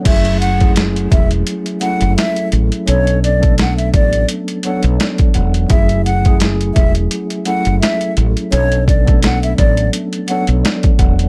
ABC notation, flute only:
X:1
M:4/4
L:1/16
Q:"Swing 16ths" 1/4=85
K:F#m
V:1 name="Flute"
e2 f2 z2 e z3 f2 e2 z2 | c2 d2 f e d2 z2 f z4 z | e2 f2 z2 e z3 f2 e2 z2 | c2 d2 f e d2 z2 f z4 z |]